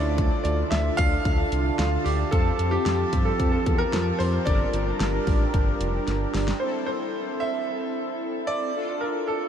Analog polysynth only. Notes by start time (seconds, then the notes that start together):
Already playing: D4 F4 A4
2.32 C4 F4 A5
4.47 D4 G4 A#4
6.61 C4 E4 A4
8.75 D4 F4 A4